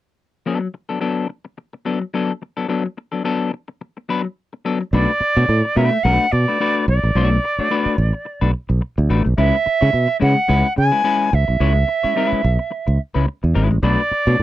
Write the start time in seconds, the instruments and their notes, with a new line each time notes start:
0.46 clean electric guitar F#3 B3 D4 A4
0.61 muted clean electric guitar stroke
0.74 muted clean electric guitar stroke
0.89 clean electric guitar F#3 B3 D4 A4
1.00 clean electric guitar F#3 B3 D4 A4
1.29 muted clean electric guitar stroke
1.45 muted clean electric guitar stroke
1.58 muted clean electric guitar stroke
1.73 muted clean electric guitar stroke
1.85 clean electric guitar F#3 B3 D4 A4
2.01 muted clean electric guitar stroke
2.14 clean electric guitar F#3 B3 D4 A4
2.42 muted clean electric guitar stroke
2.57 clean electric guitar F#3 B3 D4 A4
2.68 clean electric guitar F#3 B3 D4 A4
2.86 muted clean electric guitar stroke
2.97 muted clean electric guitar stroke
3.12 clean electric guitar F#3 B3 D4 A4
3.24 clean electric guitar F#3 B3 D4 A4
3.53 muted clean electric guitar stroke
3.68 muted clean electric guitar stroke
3.81 muted clean electric guitar stroke
3.97 muted clean electric guitar stroke
4.09 clean electric guitar F#3 B3 D4 B4
4.24 muted clean electric guitar stroke
4.53 muted clean electric guitar stroke
4.65 clean electric guitar F#3 B3 D4 A4
4.81 muted clean electric guitar stroke
4.92 fingered electric bass B1, clean electric guitar A3 D4 F#4 B4, flute D5
5.20 muted clean electric guitar stroke, muted fingered electric bass stroke
5.36 fingered electric bass B2, clean electric guitar A3 D4 F#4 C#5
5.48 fingered electric bass A2, muted clean electric guitar stroke
5.65 muted clean electric guitar stroke
5.76 fingered electric bass B2, clean electric guitar A3 D4 F#4 B4, flute E5
5.92 muted clean electric guitar stroke
6.03 fingered electric bass B1, clean electric guitar A3 D4 F#4 B4, flute F#5
6.31 fingered electric bass B2, flute D5, muted clean electric guitar stroke
6.48 clean electric guitar A3 D4 F#4 B4
6.60 clean electric guitar A3 D4 F#4 B4
6.88 fingered electric bass B1, flute D5, muted clean electric guitar stroke
7.03 fingered electric bass A1, muted clean electric guitar stroke
7.15 fingered electric bass B1, clean electric guitar A3 D4 F#4 C#5
7.32 muted clean electric guitar stroke
7.44 muted clean electric guitar stroke
7.58 clean electric guitar A3 D4 F#4 C#5, muted fingered electric bass stroke
7.70 clean electric guitar A3 D4 F#4 B4
7.86 muted fingered electric bass stroke
7.98 fingered electric bass A1, muted clean electric guitar stroke
8.13 muted clean electric guitar stroke
8.25 muted clean electric guitar stroke
8.41 fingered electric bass B1, clean electric guitar A3 D4 F#4 B4
8.69 fingered electric bass B1, muted clean electric guitar stroke
8.81 muted clean electric guitar stroke
8.98 fingered electric bass D2, muted clean electric guitar stroke
9.10 fingered electric bass A1, clean electric guitar A3 D4 F#4 B4
9.25 fingered electric bass B1, muted clean electric guitar stroke
9.37 fingered electric bass C#2, clean electric guitar G#3 C#4 E4 B4, flute E5
9.66 muted clean electric guitar stroke, muted fingered electric bass stroke
9.81 fingered electric bass C#3, clean electric guitar G#3 C#4 E4 C#5
9.93 fingered electric bass B2, muted clean electric guitar stroke
10.08 muted clean electric guitar stroke
10.20 fingered electric bass C#3, clean electric guitar G#3 C#4 E4 B4, flute F#5
10.36 muted clean electric guitar stroke
10.48 fingered electric bass C#2, clean electric guitar G#3 C#4 E4 B4
10.76 fingered electric bass C#3, flute G#5, muted clean electric guitar stroke
10.92 clean electric guitar G#3 C#4 E4 B4
11.04 clean electric guitar G#3 C#4 E4 B4
11.33 fingered electric bass C#2, flute E5
11.48 fingered electric bass B1, muted clean electric guitar stroke
11.60 fingered electric bass C#2, clean electric guitar G#3 C#4 E4 C#5
11.75 muted clean electric guitar stroke
11.88 muted clean electric guitar stroke
12.03 clean electric guitar G#3 C#4 E4 C#5, muted fingered electric bass stroke
12.16 clean electric guitar G3 C4 D#4 A#4
12.27 clean electric guitar G#3 C#4 E4 B4
12.32 muted fingered electric bass stroke
12.44 fingered electric bass B1
12.59 muted clean electric guitar stroke
12.71 muted clean electric guitar stroke
12.87 fingered electric bass C#2, muted clean electric guitar stroke
13.14 fingered electric bass C#2, clean electric guitar G#3 C#4 E4 B4
13.43 fingered electric bass E2, muted clean electric guitar stroke
13.54 fingered electric bass G#1, clean electric guitar G#3 C#4 E4 B4
13.71 fingered electric bass A1, muted clean electric guitar stroke
13.83 fingered electric bass B1, clean electric guitar A3 D4 F#4 B4, flute D5
14.11 muted fingered electric bass stroke, muted clean electric guitar stroke
14.27 fingered electric bass B2, clean electric guitar A3 D4 F#4 C#5
14.39 fingered electric bass A2, muted clean electric guitar stroke